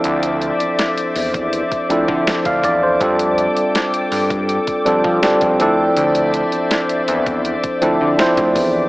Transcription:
<<
  \new Staff \with { instrumentName = "Ambient pad" } { \time 4/4 \key d \minor \tempo 4 = 81 << { d'''1~ | d'''1~ | d'''1 | } \\ { <c'' d'' e''>1 | <a' g''>2.~ <a' g''>8 <c'' d'' e''>8~ | <c'' d'' e''>1 | } >> }
  \new Staff \with { instrumentName = "Tine electric piano" } { \time 4/4 \key d \minor << { r2. r16 <d'' f''>16 d''16 <a' c''>16~ | <a' c''>16 r2. r8. | r1 | } \\ { <f c' d' e' a'>4 r4. <f c' d' e' a'>8 r4 | <g c' d' f' a'>4. r4 <g c' d' f' a'>8 <g c' d' f' g'>8 <f c' d' e' a'>8~ | <f c' d' e' a'>4 r4. <f c' d' e' a'>8 <f c' d' e' c''>4 | } >> }
  \new Staff \with { instrumentName = "Analog synth bass" } { \clef bass \time 4/4 \key d \minor d,8. e,16 r8 e,8. r16 d,16 d16 r16 d,16 e,8 | f,8. g,16 r8 g,8. r16 f,16 f16 r16 f,16 d,8 | d,8. e,16 r8 e,8. r16 d,16 d16 r16 d,16 e,8 | }
  \new DrumStaff \with { instrumentName = "Drums" } \drummode { \time 4/4 hh16 hh16 hh16 hh16 <hh sn>16 hh16 hho16 <hh bd>16 hh16 <hh bd>16 hh16 bd16 <hh sn>16 <hh bd>16 <hh bd>8 | <hh bd>16 hh16 hh16 hh16 <hh sn>16 hh16 hho16 <hh bd>16 hh16 <hh bd>16 hh16 bd16 <hh sn>16 <hh bd>16 hh8 | hh16 hh16 hh16 hh16 <hh sn>16 hh16 hh16 <hh bd>16 hh16 <hh bd>16 hh8 <hh sn>16 <hh bd>16 <hho bd>8 | }
>>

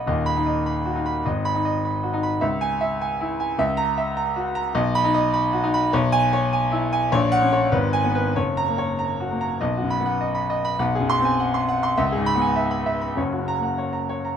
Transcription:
<<
  \new Staff \with { instrumentName = "Grand piano" } { \time 2/4 \key b \major \tempo 4 = 101 << { \tuplet 3/2 { r8 b''4 } r4 | \tuplet 3/2 { r8 b''4 } r4 | \tuplet 3/2 { r8 gis''4 } r4 | \tuplet 3/2 { r8 ais''4 } r4 |
\tuplet 3/2 { r8 b''4 } r4 | \tuplet 3/2 { r8 gis''4 } r4 | \tuplet 3/2 { r8 fis''4 r8 gis''4 } | \tuplet 3/2 { r8 ais''4 } r4 |
r8 b''8 r4 | r8 bis''8 r4 | r8 b''8 r4 | r8 ais''8 r4 | } \\ { \tuplet 3/2 { dis''4 dis''8 b''8 fis'8 b''8 } | \tuplet 3/2 { dis''4 dis''8 b''8 fis'8 b''8 } | \tuplet 3/2 { e''4 e''8 gis''8 e'8 gis''8 } | \tuplet 3/2 { e''4 e''8 ais''8 fis'8 ais''8 } |
\tuplet 3/2 { dis''4 dis''8 b''8 fis'8 b''8 } | \tuplet 3/2 { cis''4 cis''8 gis''8 e'8 gis''8 } | \tuplet 3/2 { cis''4 cis''8 b'4 b'8 } | \tuplet 3/2 { cis''4 cis''8 ais''8 fis'8 ais''8 } |
dis''16 fis'8 fis''16 dis''16 b''16 dis''16 b''16 | fis''16 gis'8 gis''16 fis''16 bis''16 fis''16 bis''16 | e''16 gis'8 gis''16 e''16 b''16 e''16 b''16 | cis''16 fis'8 fis''16 cis''16 ais''16 cis''16 ais''16 | } >> }
  \new Staff \with { instrumentName = "Grand piano" } { \clef bass \time 2/4 \key b \major <dis,, dis,>8 dis'8 r8 dis'8 | gis,,8 dis'8 r8 dis'8 | cis,2 | cis,2 |
b,,8 dis'8 r8 dis'8 | b,,2 | ais,,8 cis'8 gis,,8 b8 | fis,,8 ais8 r8 ais8 |
\tuplet 3/2 { b,,8 fis,8 b8 } r4 | \tuplet 3/2 { b,,8 fis,8 bis8 } r4 | \tuplet 3/2 { cis,8 gis,8 b8 } r4 | \tuplet 3/2 { <fis,, fis,>8 cis8 ais8 } r4 | }
>>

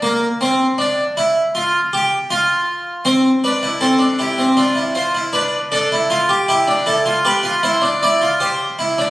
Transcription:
\new Staff \with { instrumentName = "Harpsichord" } { \time 4/4 \key c \mixolydian \tempo 4 = 79 << { bes8 c'8 d'8 e'8 f'8 g'8 f'4 | c''8 b'8 a'8 g'8 f'8 c''8 b'8 a'8 | f'8 g'8 a'8 b'8 c''8 d''8 c''4 | } \\ { r1 | c'8 d'16 e'16 c'16 d'16 e'16 c'16 d'16 e'16 f'16 e'16 d'8 d'16 e'16 | r16 g'16 e'16 d'16 e'16 f'16 g'16 f'16 e'16 d'16 e'16 f'16 g'8 e'16 d'16 | } >> }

